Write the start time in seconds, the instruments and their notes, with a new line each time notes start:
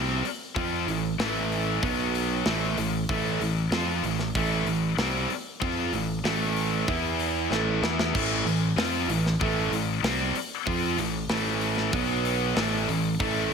Already playing: picked electric bass C2, distorted electric guitar C3 G3 C4
0.24 muted distorted electric guitar stroke, muted picked electric bass stroke, muted overdriven electric guitar stroke, open hi-hat
0.55 picked electric bass F2, distorted electric guitar F3 C4 F4, kick, open hi-hat
0.87 picked electric bass A1, distorted electric guitar A2 E3, open hi-hat
1.19 picked electric bass A1, distorted electric guitar A2 E3 A3, snare, open hi-hat
1.52 open hi-hat
1.82 picked electric bass B1, distorted electric guitar B2 F#3 B3, kick, open hi-hat
2.15 open hi-hat
2.46 picked electric bass A1, distorted electric guitar A2 E3 A3, snare, open hi-hat
2.77 picked electric bass A1, distorted electric guitar A2 E3, open hi-hat
3.09 picked electric bass A1, distorted electric guitar A2 E3 A3, kick, open hi-hat
3.40 picked electric bass A1, distorted electric guitar A2 E3, open hi-hat
3.71 picked electric bass F2, distorted electric guitar F3 C4 F4, snare, open hi-hat
4.03 picked electric bass A1, distorted electric guitar A2 E3, open hi-hat
4.19 snare
4.35 picked electric bass A1, distorted electric guitar A2 E3 A3, kick, open hi-hat
4.65 picked electric bass A1, distorted electric guitar A2 E3, open hi-hat
4.97 picked electric bass C2, distorted electric guitar C3 G3 C4, snare, open hi-hat
5.30 muted picked electric bass stroke, muted overdriven electric guitar stroke, muted distorted electric guitar stroke, open hi-hat
5.60 picked electric bass F2, distorted electric guitar F3 C4 F4, kick, open hi-hat
5.92 picked electric bass A1, distorted electric guitar A2 E3, open hi-hat
6.24 picked electric bass A1, distorted electric guitar A2 E3 A3, snare, open hi-hat
6.56 open hi-hat
6.88 picked electric bass E2, distorted electric guitar E3 B3 E4, kick, open hi-hat
7.19 open hi-hat
7.51 picked electric bass A1, distorted electric guitar A2 E3 A3, snare
7.82 picked electric bass E2, distorted electric guitar E3 B3 E4, snare
7.99 snare
8.14 picked electric bass A1, distorted electric guitar A2 E3 A3, kick, crash
8.45 picked electric bass A1, distorted electric guitar A2 E3, open hi-hat
8.76 picked electric bass F2, distorted electric guitar F3 C4 F4, snare, open hi-hat
9.08 picked electric bass A1, distorted electric guitar A2 E3, open hi-hat
9.26 snare
9.40 picked electric bass A1, distorted electric guitar A2 E3 A3, kick, open hi-hat
9.71 picked electric bass A1, distorted electric guitar A2 E3, open hi-hat
10.03 picked electric bass C2, distorted electric guitar C3 G3 C4, snare, open hi-hat
10.35 muted picked electric bass stroke, muted distorted electric guitar stroke, muted overdriven electric guitar stroke, open hi-hat
10.66 picked electric bass F2, distorted electric guitar F3 C4 F4, kick, open hi-hat
10.98 picked electric bass A1, distorted electric guitar A2 E3, open hi-hat
11.29 picked electric bass A1, distorted electric guitar A2 E3 A3, snare, open hi-hat
11.61 open hi-hat
11.78 snare
11.92 picked electric bass B1, distorted electric guitar B2 F#3 B3, kick, open hi-hat
12.25 open hi-hat
12.55 picked electric bass A1, distorted electric guitar A2 E3 A3, snare, open hi-hat
12.88 picked electric bass A1, distorted electric guitar A2 E3, open hi-hat
13.20 picked electric bass A1, distorted electric guitar A2 E3 A3, kick, open hi-hat